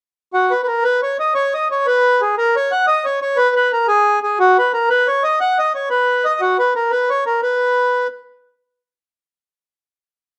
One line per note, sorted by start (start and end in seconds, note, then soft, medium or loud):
0.34 0.52 F#4 medium
0.51 0.61 B4 medium
0.63 0.67 B4 medium
0.67 0.84 A#4 medium
0.84 1.01 B4 medium
1.03 1.17 C#5 medium
1.20 1.34 D#5 medium
1.35 1.53 C#5 medium
1.54 1.68 D#5 medium
1.71 1.86 C#5 medium
1.86 2.21 B4 loud
2.21 2.35 G#4 medium
2.38 2.55 A#4 loud
2.56 2.72 C#5 medium
2.72 2.86 F#5 medium
2.87 3.05 D#5 loud
3.05 3.20 C#5 medium
3.22 3.38 C#5 medium
3.37 3.54 B4 loud
3.56 3.72 B4 medium
3.73 3.87 A#4 medium
3.88 4.19 G#4 medium
4.23 4.39 G#4 medium
4.40 4.57 F#4 medium
4.58 4.72 B4 medium
4.73 4.89 A#4 medium
4.89 5.08 B4 loud
5.08 5.23 C#5 medium
5.24 5.39 D#5 medium
5.40 5.58 F#5 medium
5.59 5.73 D#5 medium
5.75 5.89 C#5 medium
5.90 6.25 B4 medium
6.25 6.41 D#5 medium
6.41 6.57 F#4 medium
6.59 6.74 B4 medium
6.76 6.92 A#4 medium
6.91 7.10 B4 medium
7.10 7.24 C#5 medium
7.26 7.41 A#4 medium
7.42 8.07 B4 medium